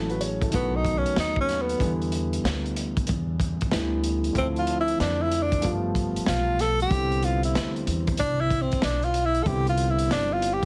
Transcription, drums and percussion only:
0.10 closed hi-hat
0.21 closed hi-hat
0.41 kick, closed hi-hat
0.52 kick, closed hi-hat
0.85 kick, closed hi-hat
1.06 closed hi-hat
1.16 snare, closed hi-hat
1.36 kick
1.49 snare, closed hi-hat
1.69 closed hi-hat
1.80 kick, closed hi-hat
2.02 closed hi-hat
2.12 closed hi-hat
2.33 closed hi-hat
2.45 snare, closed hi-hat
2.66 closed hi-hat
2.76 closed hi-hat
2.97 kick, closed hi-hat
3.07 kick, closed hi-hat
3.40 kick, closed hi-hat
3.61 kick, closed hi-hat
3.71 snare, closed hi-hat
4.04 closed hi-hat
4.24 closed hi-hat
4.35 kick, closed hi-hat
4.56 closed hi-hat
4.67 closed hi-hat
4.88 closed hi-hat
5.00 snare, closed hi-hat
5.32 closed hi-hat
5.52 kick, closed hi-hat
5.62 kick, closed hi-hat
5.95 kick, closed hi-hat
6.16 closed hi-hat
6.26 snare, closed hi-hat
6.59 snare, closed hi-hat
6.80 closed hi-hat
6.91 kick, closed hi-hat
7.12 closed hi-hat
7.23 closed hi-hat
7.43 closed hi-hat
7.55 snare, closed hi-hat
7.76 closed hi-hat
7.87 closed hi-hat
8.07 kick, closed hi-hat
8.17 kick, closed hi-hat
8.51 kick, closed hi-hat
8.72 kick, closed hi-hat
8.82 snare, closed hi-hat
9.03 closed hi-hat
9.14 closed hi-hat
9.35 closed hi-hat
9.46 kick, closed hi-hat
9.67 closed hi-hat
9.77 closed hi-hat
9.99 closed hi-hat
10.11 snare, closed hi-hat
10.42 closed hi-hat

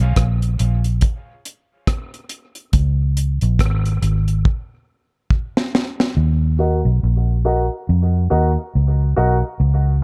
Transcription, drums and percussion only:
0.16 kick, cross-stick, closed hi-hat
0.42 closed hi-hat
0.59 closed hi-hat
0.84 closed hi-hat
1.01 kick, closed hi-hat
1.45 closed hi-hat
1.87 kick, cross-stick, closed hi-hat
2.14 closed hi-hat
2.29 closed hi-hat
2.55 closed hi-hat
2.73 kick, closed hi-hat
3.17 closed hi-hat
3.41 closed hi-hat
3.59 kick, cross-stick, closed hi-hat
3.86 closed hi-hat
4.03 closed hi-hat
4.28 closed hi-hat
4.45 kick
5.30 kick
5.57 snare
5.75 snare
6.00 snare

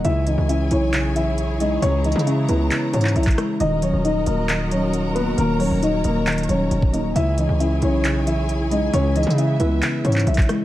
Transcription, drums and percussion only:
0.05 closed hi-hat
0.27 closed hi-hat
0.49 closed hi-hat
0.71 closed hi-hat
0.93 clap, closed hi-hat
1.16 closed hi-hat
1.38 closed hi-hat
1.60 closed hi-hat
1.82 closed hi-hat
2.04 closed hi-hat, open hi-hat
2.12 closed hi-hat
2.19 closed hi-hat
2.27 closed hi-hat
2.49 closed hi-hat
2.71 clap, closed hi-hat
2.93 closed hi-hat
3.01 clap, closed hi-hat
3.08 closed hi-hat
3.16 closed hi-hat
3.23 kick, clap, closed hi-hat
3.31 closed hi-hat
3.38 cross-stick, closed hi-hat
3.60 closed hi-hat
3.82 closed hi-hat
4.05 closed hi-hat
4.26 closed hi-hat
4.49 clap, closed hi-hat
4.71 closed hi-hat
4.93 closed hi-hat
5.16 closed hi-hat
5.38 closed hi-hat
5.60 open hi-hat
5.83 closed hi-hat
6.04 closed hi-hat
6.27 clap, closed hi-hat
6.32 closed hi-hat
6.38 closed hi-hat
6.43 closed hi-hat
6.49 closed hi-hat
6.71 closed hi-hat
6.82 kick
6.94 closed hi-hat
7.16 closed hi-hat
7.38 closed hi-hat
7.60 closed hi-hat
7.82 closed hi-hat
8.04 clap, closed hi-hat
8.27 closed hi-hat
8.49 closed hi-hat
8.71 closed hi-hat
8.93 closed hi-hat
9.16 closed hi-hat, open hi-hat
9.23 closed hi-hat
9.30 closed hi-hat
9.38 closed hi-hat
9.60 closed hi-hat
9.82 clap, closed hi-hat
10.05 closed hi-hat
10.12 clap, closed hi-hat
10.19 closed hi-hat
10.27 closed hi-hat
10.34 kick, clap, closed hi-hat
10.42 closed hi-hat
10.49 cross-stick, closed hi-hat

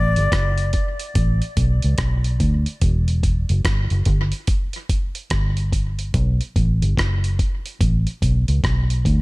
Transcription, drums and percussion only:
0.16 closed hi-hat
0.32 kick, cross-stick, closed hi-hat
0.58 closed hi-hat
0.73 kick, closed hi-hat
0.99 closed hi-hat
1.15 kick, closed hi-hat
1.42 closed hi-hat
1.57 kick, closed hi-hat
1.82 closed hi-hat
1.98 kick, cross-stick, closed hi-hat
2.24 closed hi-hat
2.40 kick, closed hi-hat
2.66 closed hi-hat
2.81 kick, closed hi-hat
3.08 closed hi-hat
3.23 kick, closed hi-hat
3.49 closed hi-hat
3.65 kick, cross-stick, closed hi-hat
3.90 closed hi-hat
4.05 kick, closed hi-hat
4.32 closed hi-hat
4.47 kick, closed hi-hat
4.73 closed hi-hat
4.89 kick, closed hi-hat
5.15 closed hi-hat
5.30 kick, cross-stick, closed hi-hat
5.57 closed hi-hat
5.73 kick, closed hi-hat
5.99 closed hi-hat
6.14 kick, closed hi-hat
6.41 closed hi-hat
6.56 kick, closed hi-hat
6.82 closed hi-hat
6.97 kick, cross-stick, closed hi-hat
7.24 closed hi-hat
7.39 kick, closed hi-hat
7.66 closed hi-hat
7.81 kick, closed hi-hat
8.07 closed hi-hat
8.22 kick, closed hi-hat
8.48 closed hi-hat
8.64 kick, cross-stick, closed hi-hat
8.90 closed hi-hat
9.05 kick, closed hi-hat

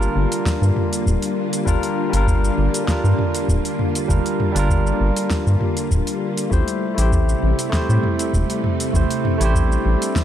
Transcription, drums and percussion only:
0.02 shaker
0.32 open hi-hat, shaker
0.46 kick, snare, shaker
0.63 shaker
0.76 mid tom
0.93 open hi-hat, shaker
1.06 kick, shaker
1.22 open hi-hat, shaker
1.53 open hi-hat, shaker
1.67 kick, shaker
1.83 open hi-hat, shaker
2.13 open hi-hat, shaker
2.27 kick, shaker
2.45 shaker
2.74 open hi-hat, shaker
2.88 kick, snare, shaker
3.05 shaker
3.19 mid tom
3.35 open hi-hat, shaker
3.49 kick, shaker
3.65 open hi-hat, shaker
3.79 mid tom
3.95 open hi-hat, shaker
4.09 kick, shaker
4.26 open hi-hat, shaker
4.40 mid tom
4.56 open hi-hat, shaker
4.70 kick, shaker
4.87 shaker
5.17 open hi-hat, shaker
5.30 kick, snare, shaker
5.47 shaker
5.61 mid tom
5.77 open hi-hat, shaker
5.91 kick, shaker
6.07 open hi-hat, shaker
6.37 open hi-hat, shaker
6.52 kick, shaker
6.68 open hi-hat, shaker
6.98 open hi-hat, shaker
7.12 kick, shaker
7.29 shaker
7.59 open hi-hat, shaker
7.73 kick, snare, shaker
7.90 shaker
8.03 mid tom
8.19 open hi-hat, shaker
8.34 kick, shaker
8.50 open hi-hat, shaker
8.64 mid tom
8.80 open hi-hat, shaker
8.94 kick, shaker
9.11 open hi-hat, shaker
9.25 mid tom
9.41 open hi-hat, shaker
9.55 kick, shaker
9.72 shaker
10.02 open hi-hat, shaker
10.16 kick, snare, shaker

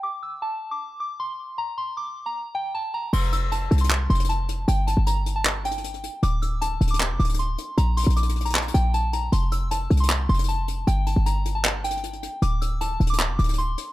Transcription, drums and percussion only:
3.13 crash
3.32 closed hi-hat
3.52 closed hi-hat
3.71 closed hi-hat
3.78 closed hi-hat
3.84 closed hi-hat
3.90 clap, closed hi-hat
4.10 closed hi-hat
4.15 closed hi-hat
4.20 closed hi-hat
4.24 closed hi-hat
4.29 closed hi-hat
4.49 closed hi-hat
4.68 closed hi-hat
4.87 closed hi-hat
5.07 closed hi-hat
5.26 closed hi-hat
5.45 clap, closed hi-hat
5.65 closed hi-hat
5.71 closed hi-hat
5.78 closed hi-hat
5.84 closed hi-hat
5.94 closed hi-hat
6.03 closed hi-hat
6.23 closed hi-hat
6.42 closed hi-hat
6.62 closed hi-hat
6.81 closed hi-hat
6.87 closed hi-hat
6.94 closed hi-hat
7.00 clap, closed hi-hat
7.20 closed hi-hat
7.24 closed hi-hat
7.29 closed hi-hat
7.34 closed hi-hat
7.39 closed hi-hat
7.58 closed hi-hat
7.78 closed hi-hat
7.97 closed hi-hat, open hi-hat
8.03 closed hi-hat
8.10 closed hi-hat
8.16 closed hi-hat
8.23 closed hi-hat
8.29 closed hi-hat
8.36 closed hi-hat
8.40 closed hi-hat
8.45 closed hi-hat
8.50 closed hi-hat
8.55 clap, closed hi-hat
8.61 closed hi-hat
8.68 closed hi-hat
8.74 closed hi-hat
8.94 closed hi-hat
9.13 closed hi-hat
9.32 closed hi-hat
9.52 closed hi-hat
9.71 closed hi-hat
9.90 closed hi-hat
9.97 closed hi-hat
10.03 closed hi-hat
10.10 clap, closed hi-hat
10.29 closed hi-hat
10.34 closed hi-hat
10.39 closed hi-hat
10.44 closed hi-hat
10.48 closed hi-hat
10.68 closed hi-hat
10.87 closed hi-hat
11.07 closed hi-hat
11.26 closed hi-hat
11.45 closed hi-hat
11.65 clap, closed hi-hat
11.84 closed hi-hat
11.91 closed hi-hat
11.97 closed hi-hat
12.03 closed hi-hat
12.13 closed hi-hat
12.23 closed hi-hat
12.42 closed hi-hat
12.62 closed hi-hat
12.81 closed hi-hat
13.00 closed hi-hat
13.07 closed hi-hat
13.13 closed hi-hat
13.20 clap, closed hi-hat
13.39 closed hi-hat
13.44 closed hi-hat
13.49 closed hi-hat
13.53 closed hi-hat
13.58 closed hi-hat
13.78 closed hi-hat

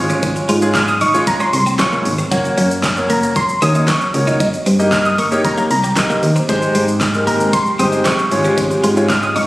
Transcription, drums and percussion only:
0.10 shaker
0.23 kick, closed hi-hat, shaker
0.36 shaker
0.49 open hi-hat, shaker
0.62 shaker
0.74 kick, snare, clap, closed hi-hat, shaker
0.88 shaker
1.01 open hi-hat, shaker
1.14 shaker
1.27 kick, closed hi-hat, shaker
1.40 shaker
1.53 open hi-hat, shaker
1.66 shaker
1.79 kick, snare, clap, closed hi-hat, shaker
1.92 shaker
2.05 open hi-hat, shaker
2.18 shaker
2.32 kick, closed hi-hat, shaker
2.45 shaker
2.58 open hi-hat, shaker
2.71 shaker
2.83 kick, snare, clap, closed hi-hat, shaker
2.97 shaker
3.10 open hi-hat, shaker
3.23 shaker
3.36 kick, closed hi-hat, shaker
3.49 shaker
3.62 open hi-hat, shaker
3.75 shaker
3.88 kick, snare, clap, closed hi-hat, shaker
4.01 shaker
4.14 open hi-hat, shaker
4.27 shaker
4.40 kick, closed hi-hat, shaker
4.53 shaker
4.66 open hi-hat, shaker
4.80 shaker
4.92 kick, snare, clap, closed hi-hat, shaker
5.05 shaker
5.18 open hi-hat, shaker
5.32 shaker
5.45 kick, closed hi-hat, shaker
5.58 shaker
5.71 open hi-hat, shaker
5.84 shaker
5.96 kick, snare, clap, closed hi-hat, shaker
6.10 shaker
6.23 open hi-hat, shaker
6.36 shaker
6.49 kick, closed hi-hat, shaker
6.62 shaker
6.75 open hi-hat, shaker
6.88 shaker
7.00 kick, snare, clap, closed hi-hat, shaker
7.14 shaker
7.27 open hi-hat, shaker
7.40 shaker
7.53 kick, closed hi-hat, shaker
7.66 shaker
7.79 open hi-hat, shaker
7.92 shaker
8.05 kick, snare, clap, closed hi-hat, shaker
8.18 shaker
8.32 open hi-hat, shaker
8.45 shaker
8.58 kick, closed hi-hat, shaker
8.71 shaker
8.84 open hi-hat, shaker
8.97 shaker
9.09 kick, snare, clap, closed hi-hat, shaker
9.23 shaker
9.36 open hi-hat, shaker

